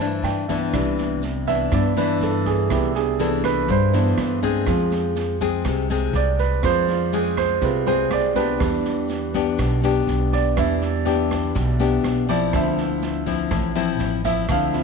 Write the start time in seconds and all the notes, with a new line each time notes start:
Already playing: G2 D4 A4 C5 E5
0.00 E3 A3 D4 A5, snare
0.23 G2 G5, cross-stick, snare
0.48 E3 B3 D4 E5, kick, snare
0.73 C2 C3 B3 D4 E4, kick, cross-stick, snare, shaker
0.97 snare, shaker
1.22 snare, shaker
1.47 E3 B3 D4 E5, kick, snare, shaker
1.72 G2 B3 D4 E4 D5, kick, cross-stick, snare, shaker
1.96 E3 B3 D4 B4, snare, shaker
2.20 G2 A4, snare, shaker
2.46 G#4, kick, snare, shaker
2.70 C2 C3 B3 D4 E4 G4, kick, cross-stick, snare, shaker
2.95 G#4, snare, shaker
3.20 E3 B3 D4 A4, snare, shaker
3.44 B4, kick, cross-stick, snare, shaker
3.68 G2 C5, kick, snare, shaker
3.92 E3 B3 D4 E4, snare, shaker
4.17 G2, cross-stick, snare, shaker
4.42 G#3 C4 G#4, kick, snare, shaker
4.66 F2 F3 G#3 C4 F4, kick, cross-stick, snare, shaker
4.91 snare, shaker
5.16 snare, shaker
5.40 G#3 C4 G#4, kick, snare, shaker
5.65 C2 C3, kick, cross-stick, snare, shaker
5.89 G#3 C4 G#4, snare, shaker
6.13 C2 D5, snare, shaker
6.39 B4, kick, snare, shaker
6.62 F2 F3 G#3 C4 F4 C5, kick, cross-stick, snare, shaker
6.88 F4, snare, shaker
7.13 G#3 C4 G#4, snare, shaker
7.37 C5, kick, cross-stick, snare, shaker
7.61 C2 C3 G#3 C4 F4 B4, kick, snare, shaker
7.86 G#3 C4 G#4 C5, snare, shaker
8.11 C2 D5, cross-stick, snare, shaker
8.35 B3 D4 G4 B4, kick, snare, shaker
8.59 E2 E3 G3 B3 D4, kick, cross-stick, snare, shaker
8.85 snare, shaker
9.09 snare, shaker
9.34 B3 D4 G4, kick, snare, shaker
9.58 B1 B2, kick, cross-stick, snare, shaker
9.83 B3 D4 G4, snare, shaker
10.07 B1, snare, shaker
10.33 D5, kick, snare, shaker
10.57 E2 E3 G3 B3 D4 E5, kick, cross-stick, snare, shaker
10.82 snare, shaker
11.05 B3 D4 G4, snare, shaker
11.31 kick, cross-stick, snare, shaker
11.55 B1 B2, kick, snare, shaker
11.80 B3 D4 G4, snare, shaker
12.03 B1, cross-stick, snare, shaker
12.29 F3 C4 E4 D5, kick, snare, shaker
12.53 D2 D3 F3 C4 E4 E5, kick, cross-stick, snare, shaker
12.78 snare, shaker
13.02 snare, shaker
13.26 F3 C4 E4, kick, snare, shaker
13.50 A1 A2, kick, cross-stick, snare, shaker
13.75 F3 C4 E4, snare, shaker
13.99 A1, snare, shaker
14.24 F3 C4 E4 E5, kick, snare, shaker
14.48 D2 D3 F3 C4 E4 F5, kick, cross-stick, snare, shaker
14.73 F3 C4 E4, snare, shaker